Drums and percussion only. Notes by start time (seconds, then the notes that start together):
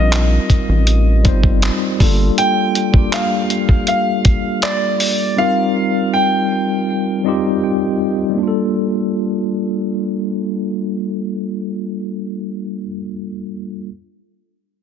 0.13 clap, closed hi-hat
0.50 kick, closed hi-hat
0.87 closed hi-hat
1.25 kick, closed hi-hat
1.43 kick
1.62 clap, closed hi-hat
2.00 kick, open hi-hat
2.38 closed hi-hat
2.75 closed hi-hat
2.94 kick
3.13 clap, closed hi-hat
3.50 closed hi-hat
3.69 kick
3.87 closed hi-hat
4.25 kick, closed hi-hat
4.62 clap, closed hi-hat
5.00 open hi-hat